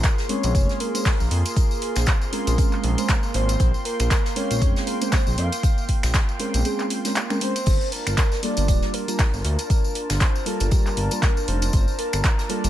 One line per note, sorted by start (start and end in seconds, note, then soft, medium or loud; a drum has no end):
0.00 7.63 A#3 medium
0.00 7.63 F4 medium
0.00 3.56 G#4 medium
0.00 0.29 A#4 loud
0.00 7.63 C6 medium
0.00 kick loud
0.00 snare loud
0.00 closed hi-hat medium
0.00 tambourine medium
0.04 clap loud
0.04 closed hi-hat medium
0.18 snare medium
0.18 tambourine soft
0.29 0.52 G#3 medium
0.29 0.52 C4 medium
0.29 0.52 C#4 medium
0.29 0.52 A#4 medium
0.29 0.82 C#5 loud
0.29 closed hi-hat medium
0.29 open hi-hat loud
0.43 0.56 A#1 medium
0.43 closed hi-hat medium
0.43 closed hi-hat soft
0.43 tambourine medium
0.54 0.67 F1 loud
0.54 0.91 G#3 medium
0.54 0.91 C4 medium
0.54 0.91 C#4 medium
0.54 0.92 G#4 medium
0.54 kick loud
0.54 closed hi-hat medium
0.54 tambourine medium
0.69 snare soft
0.69 tambourine soft
0.80 1.56 A#4 loud
0.80 closed hi-hat medium
0.80 open hi-hat loud
0.94 1.10 G#3 medium
0.94 1.10 C4 medium
0.94 1.10 C#4 medium
0.94 1.10 C5 medium
0.94 closed hi-hat medium
0.94 tambourine medium
1.05 kick loud
1.05 snare loud
1.05 clap loud
1.05 closed hi-hat medium
1.05 open hi-hat medium
1.05 tambourine medium
1.20 1.29 A#1 medium
1.20 tambourine soft
1.31 1.43 F2 medium
1.31 closed hi-hat medium
1.31 open hi-hat loud
1.45 closed hi-hat medium
1.45 tambourine medium
1.56 1.98 A#4 loud
1.56 kick loud
1.56 closed hi-hat medium
1.56 tambourine medium
1.71 tambourine soft
1.82 closed hi-hat medium
1.82 open hi-hat loud
1.96 2.05 A#1 medium
1.96 2.32 C5 loud
1.96 finger snap medium
1.96 snare medium
1.96 closed hi-hat medium
1.96 tambourine medium
2.06 kick loud
2.06 snare loud
2.06 clap loud
2.06 closed hi-hat medium
2.06 tambourine medium
2.22 tambourine soft
2.32 2.55 G#3 medium
2.32 2.55 C4 medium
2.32 2.56 C#4 medium
2.32 3.36 A#4 loud
2.32 2.56 A#4 medium
2.32 closed hi-hat medium
2.32 open hi-hat loud
2.47 2.56 A#1 medium
2.47 closed hi-hat medium
2.47 tambourine medium
2.58 2.94 G#3 medium
2.58 2.95 C4 medium
2.58 2.95 C#4 medium
2.58 2.95 G#4 medium
2.58 kick loud
2.58 closed hi-hat medium
2.58 tambourine medium
2.72 clap soft
2.72 tambourine soft
2.83 2.96 A#1 medium
2.83 closed hi-hat medium
2.83 open hi-hat loud
2.98 3.13 G#3 medium
2.98 3.13 C4 medium
2.98 3.13 C#4 medium
2.98 3.14 C5 medium
2.98 closed hi-hat medium
2.98 tambourine medium
3.08 kick loud
3.08 snare loud
3.08 clap loud
3.08 closed hi-hat medium
3.08 tambourine medium
3.23 tambourine soft
3.34 3.56 G#1 loud
3.34 3.84 C5 loud
3.34 closed hi-hat medium
3.34 open hi-hat loud
3.49 closed hi-hat medium
3.49 tambourine medium
3.60 3.72 A#1 loud
3.60 7.63 G5 medium
3.60 kick loud
3.60 closed hi-hat medium
3.60 tambourine medium
3.74 tambourine soft
3.85 4.38 A#4 loud
3.85 closed hi-hat medium
3.85 open hi-hat loud
4.00 4.09 A#1 medium
4.00 finger snap medium
4.00 closed hi-hat medium
4.00 tambourine medium
4.11 kick loud
4.11 snare loud
4.11 clap loud
4.11 closed hi-hat medium
4.11 tambourine medium
4.26 snare medium
4.26 tambourine soft
4.36 4.59 G#3 medium
4.36 4.59 C4 medium
4.36 4.59 C#4 medium
4.36 4.59 A#4 medium
4.36 4.86 C#5 loud
4.36 closed hi-hat medium
4.36 open hi-hat loud
4.51 4.63 A#1 medium
4.51 closed hi-hat medium
4.51 closed hi-hat soft
4.51 tambourine medium
4.61 4.74 F1 medium
4.61 4.98 G#3 medium
4.61 4.98 C4 medium
4.61 4.98 C#4 medium
4.61 4.98 G#4 medium
4.61 kick loud
4.61 closed hi-hat medium
4.61 tambourine medium
4.76 snare medium
4.76 tambourine soft
4.87 5.11 A#4 loud
4.87 closed hi-hat medium
4.87 open hi-hat loud
5.01 5.17 G#3 medium
5.01 5.17 C4 medium
5.01 5.17 C#4 medium
5.01 5.17 C5 medium
5.01 closed hi-hat medium
5.01 tambourine medium
5.12 5.39 C5 loud
5.12 kick loud
5.12 snare loud
5.12 clap loud
5.12 closed hi-hat medium
5.12 open hi-hat medium
5.12 tambourine medium
5.27 5.36 A#1 medium
5.27 tambourine soft
5.38 5.50 F2 medium
5.38 5.89 F5 loud
5.38 closed hi-hat medium
5.38 open hi-hat loud
5.52 closed hi-hat medium
5.52 tambourine medium
5.63 kick loud
5.63 closed hi-hat medium
5.63 tambourine medium
5.78 tambourine soft
5.88 kick medium
5.88 closed hi-hat medium
5.88 open hi-hat loud
6.03 6.12 A#1 medium
6.03 finger snap medium
6.03 snare medium
6.03 closed hi-hat medium
6.03 tambourine medium
6.14 kick loud
6.14 snare loud
6.14 clap loud
6.14 closed hi-hat loud
6.14 closed hi-hat medium
6.14 tambourine medium
6.29 tambourine soft
6.39 6.62 G#3 medium
6.39 6.62 C4 medium
6.39 6.63 C#4 medium
6.39 6.63 A#4 medium
6.39 closed hi-hat medium
6.39 open hi-hat loud
6.54 6.63 A#1 medium
6.54 closed hi-hat medium
6.54 tambourine medium
6.65 7.01 G#3 medium
6.65 7.01 C4 medium
6.65 7.02 C#4 medium
6.65 7.02 G#4 medium
6.65 closed hi-hat medium
6.65 tambourine medium
6.79 clap soft
6.79 tambourine soft
6.90 closed hi-hat medium
6.90 open hi-hat loud
7.05 7.14 G#3 medium
7.05 7.14 C4 medium
7.05 7.14 C#4 medium
7.05 7.14 A#4 medium
7.05 snare soft
7.05 closed hi-hat medium
7.05 tambourine medium
7.15 clap loud
7.15 closed hi-hat medium
7.15 tambourine medium
7.30 7.38 G#3 medium
7.30 7.39 C4 medium
7.30 7.39 C#4 medium
7.30 7.39 A#4 loud
7.30 finger snap medium
7.30 tambourine soft
7.41 7.53 G#3 medium
7.41 7.53 C4 medium
7.41 7.53 C#4 medium
7.41 7.53 A#4 loud
7.41 7.89 C5 loud
7.41 closed hi-hat medium
7.41 open hi-hat loud
7.56 closed hi-hat medium
7.56 tambourine medium
7.66 7.79 G1 loud
7.66 12.70 D4 medium
7.66 12.70 F4 medium
7.66 12.70 A#4 loud
7.66 12.70 A5 medium
7.66 kick loud
7.66 closed hi-hat medium
7.66 crash medium
7.66 tambourine medium
7.81 tambourine soft
7.92 8.39 A#4 loud
7.92 closed hi-hat medium
7.92 open hi-hat loud
8.07 8.16 G1 medium
8.07 finger snap medium
8.07 closed hi-hat medium
8.07 tambourine medium
8.17 kick loud
8.17 snare loud
8.17 clap loud
8.17 closed hi-hat loud
8.17 closed hi-hat medium
8.17 tambourine medium
8.32 snare medium
8.32 tambourine soft
8.43 8.66 G3 medium
8.43 8.66 A#3 medium
8.43 8.66 F4 medium
8.43 8.66 A4 medium
8.43 8.95 D5 loud
8.43 closed hi-hat medium
8.43 open hi-hat loud
8.57 8.70 G1 medium
8.57 closed hi-hat soft
8.57 closed hi-hat medium
8.57 tambourine medium
8.68 8.80 D1 medium
8.68 9.05 G3 medium
8.68 9.05 A#3 medium
8.68 9.05 F4 medium
8.68 9.05 G4 medium
8.68 kick loud
8.68 closed hi-hat medium
8.68 tambourine medium
8.82 snare soft
8.82 tambourine soft
8.93 9.69 A#4 loud
8.93 closed hi-hat medium
8.93 open hi-hat loud
9.08 9.23 G3 medium
9.08 9.23 A#3 medium
9.08 9.24 F4 medium
9.08 9.24 A#4 medium
9.08 closed hi-hat medium
9.08 tambourine medium
9.19 kick loud
9.19 snare loud
9.19 clap loud
9.19 closed hi-hat medium
9.19 open hi-hat medium
9.19 tambourine medium
9.33 9.43 G1 medium
9.33 tambourine soft
9.44 9.57 D2 medium
9.44 closed hi-hat medium
9.44 open hi-hat loud
9.59 closed hi-hat medium
9.59 tambourine medium
9.70 10.07 A#4 loud
9.70 kick loud
9.70 closed hi-hat medium
9.70 tambourine medium
9.84 tambourine soft
9.95 closed hi-hat medium
9.95 open hi-hat loud
10.10 10.19 G1 medium
10.10 10.48 C5 loud
10.10 finger snap medium
10.10 snare medium
10.10 closed hi-hat medium
10.10 tambourine medium
10.20 kick loud
10.20 snare loud
10.20 clap loud
10.20 closed hi-hat medium
10.20 tambourine medium
10.35 tambourine soft
10.46 10.69 G3 medium
10.46 10.69 A#3 medium
10.46 10.69 F4 medium
10.46 10.69 A4 medium
10.46 11.49 A#4 loud
10.46 closed hi-hat medium
10.46 open hi-hat loud
10.60 10.70 G1 medium
10.60 closed hi-hat medium
10.60 tambourine medium
10.71 11.08 G3 medium
10.71 11.08 A#3 medium
10.71 11.08 G4 medium
10.71 kick loud
10.71 closed hi-hat medium
10.71 tambourine medium
10.86 clap soft
10.86 tambourine soft
10.97 11.09 G1 loud
10.97 closed hi-hat medium
10.97 open hi-hat loud
11.11 11.27 G3 medium
11.11 11.27 A#3 medium
11.11 11.27 F4 medium
11.11 11.27 A#4 medium
11.11 closed hi-hat medium
11.11 tambourine medium
11.23 kick loud
11.23 snare loud
11.23 clap loud
11.23 closed hi-hat medium
11.23 tambourine medium
11.37 tambourine soft
11.48 11.70 F1 loud
11.48 11.98 C5 loud
11.48 closed hi-hat medium
11.48 open hi-hat loud
11.62 closed hi-hat medium
11.62 tambourine medium
11.73 11.86 G1 loud
11.73 kick loud
11.73 closed hi-hat medium
11.73 tambourine medium
11.88 tambourine soft
11.99 12.51 A#4 loud
11.99 closed hi-hat medium
11.99 open hi-hat loud
12.13 12.22 G1 medium
12.13 finger snap medium
12.13 closed hi-hat medium
12.13 tambourine medium
12.24 kick loud
12.24 snare loud
12.24 clap loud
12.24 closed hi-hat medium
12.24 tambourine medium
12.39 snare medium
12.39 tambourine soft
12.49 12.70 G3 medium
12.49 12.70 A#3 medium
12.49 12.70 F4 medium
12.49 12.70 A4 medium
12.49 12.70 D5 loud
12.49 closed hi-hat medium
12.49 open hi-hat loud
12.64 12.70 G1 medium
12.64 closed hi-hat soft
12.64 closed hi-hat medium
12.64 tambourine medium